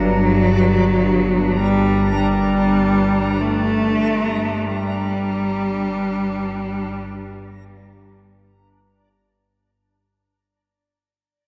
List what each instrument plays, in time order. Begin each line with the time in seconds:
Already playing: synth drone G1 G2, cello F#3, ambient pad D4 G5 A#5, synth texture D4 A#5
1.56 cello G3
2.16 cello G3
3.41 cello A3
4.66 cello G3